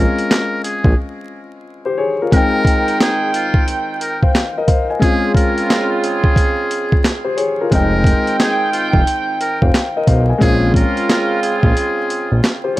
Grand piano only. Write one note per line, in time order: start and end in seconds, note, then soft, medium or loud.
0.00 0.86 G#3 medium
0.00 0.86 C4 medium
0.00 0.87 C#4 medium
0.00 0.88 F4 loud
0.00 2.34 D#5 medium
0.00 2.35 G#5 medium
1.85 1.98 G4 medium
1.85 1.98 C5 medium
1.97 2.18 G#4 medium
1.97 2.18 C#5 medium
2.22 2.53 F4 medium
2.22 2.53 A#4 medium
2.31 3.56 G#3 medium
2.31 3.57 C4 medium
2.31 3.58 D#4 medium
2.36 3.58 G5 medium
4.23 4.55 C5 medium
4.23 4.54 F5 medium
4.58 4.69 A#4 medium
4.58 4.69 D#5 medium
4.67 4.88 C5 medium
4.67 4.88 F5 medium
4.90 5.22 D#5 medium
4.90 5.22 G#5 medium
4.99 6.25 G#3 medium
4.99 6.26 C4 medium
4.99 6.26 C#4 medium
5.04 6.27 F4 medium
7.24 7.37 G4 medium
7.24 7.37 C5 medium
7.37 7.58 G#4 medium
7.37 7.57 C#5 medium
7.61 7.93 F4 medium
7.61 7.92 A#4 medium
7.71 8.95 G#3 medium
7.71 8.96 C4 medium
7.71 8.97 D#4 medium
7.75 8.98 G5 medium
9.62 9.94 C5 medium
9.62 9.94 F5 medium
9.97 10.08 A#4 medium
9.97 10.08 D#5 medium
10.07 10.28 C5 medium
10.07 10.27 F5 medium
10.29 10.61 D#5 medium
10.29 10.61 G#5 medium
10.38 11.64 G#3 medium
10.38 11.65 C4 medium
10.38 11.66 C#4 medium
10.43 11.66 F4 medium
12.64 12.77 G4 medium
12.64 12.76 C5 medium
12.76 12.80 G#4 medium
12.76 12.80 C#5 medium